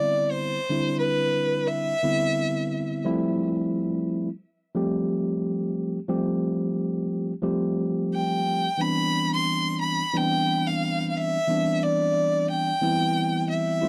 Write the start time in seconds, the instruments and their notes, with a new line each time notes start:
Already playing: tine electric piano D3 G3 B3 C4 E4, violin D5
0.31 violin C5
0.69 tine electric piano D3 G3 C4 D4 E4
0.98 violin B4
1.67 violin E5
2.03 tine electric piano D3 G3 B3 C4 E4
3.05 tine electric piano F3 G3 A3 C4 E4
4.75 tine electric piano F3 G3 A3 C4 G4
6.08 tine electric piano F3 G3 A3 C4 G4
7.42 tine electric piano F3 G3 A3 C4 G4
8.14 violin G5
8.78 tine electric piano E3 G3 B3 C4 D4, violin B5
9.33 violin C6
9.81 violin B5
10.13 tine electric piano E3 G3 B3 C4 D4, violin G5
10.67 violin F5
11.10 violin F5
11.17 violin E5
11.47 tine electric piano E3 G3 B3 C4 D4
11.83 violin D5
12.50 violin G5
12.81 tine electric piano E3 G3 B3 C4 E4
13.50 violin E5
13.81 tine electric piano G3 A3 C4 E4 F4